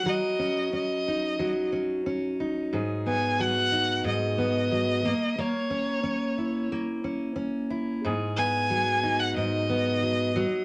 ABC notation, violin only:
X:1
M:4/4
L:1/16
Q:"Swing 16ths" 1/4=90
K:G#m
V:1 name="Violin"
d4 d6 z6 | z2 g2 f4 d8 | c8 z8 | z2 g4- g f d8 |]